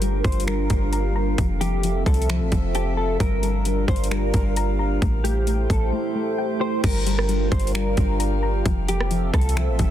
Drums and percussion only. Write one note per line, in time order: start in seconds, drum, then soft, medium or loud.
0.02 closed hi-hat medium
0.24 kick loud
0.24 closed hi-hat soft
0.32 closed hi-hat medium
0.40 closed hi-hat medium
0.48 finger snap loud
0.48 closed hi-hat medium
0.70 kick loud
0.70 closed hi-hat medium
0.93 closed hi-hat medium
1.38 kick loud
1.38 closed hi-hat medium
1.61 closed hi-hat medium
1.83 closed hi-hat medium
2.06 kick loud
2.06 closed hi-hat soft
2.14 closed hi-hat medium
2.22 closed hi-hat medium
2.29 finger snap loud
2.29 closed hi-hat medium
2.52 kick medium
2.52 closed hi-hat medium
2.75 closed hi-hat medium
3.20 kick loud
3.20 closed hi-hat medium
3.43 closed hi-hat medium
3.65 closed hi-hat medium
3.88 kick loud
3.88 closed hi-hat soft
3.96 closed hi-hat medium
4.04 closed hi-hat medium
4.11 finger snap loud
4.11 closed hi-hat medium
4.34 kick loud
4.34 closed hi-hat medium
4.56 closed hi-hat medium
5.02 kick loud
5.02 closed hi-hat medium
5.25 closed hi-hat medium
5.47 closed hi-hat medium
5.70 kick loud
5.70 closed hi-hat medium
6.84 kick loud
6.84 closed hi-hat medium
6.84 crash loud
7.07 closed hi-hat medium
7.19 cross-stick medium
7.29 closed hi-hat medium
7.52 kick loud
7.52 closed hi-hat soft
7.60 closed hi-hat medium
7.67 closed hi-hat medium
7.75 finger snap loud
7.75 closed hi-hat medium
7.97 kick loud
7.97 closed hi-hat medium
8.20 closed hi-hat medium
8.66 kick loud
8.66 closed hi-hat medium
8.88 closed hi-hat medium
9.01 cross-stick loud
9.11 closed hi-hat medium
9.34 kick loud
9.34 cross-stick loud
9.34 closed hi-hat soft
9.41 closed hi-hat medium
9.49 closed hi-hat medium
9.57 finger snap loud
9.57 closed hi-hat medium
9.79 kick medium
9.79 closed hi-hat medium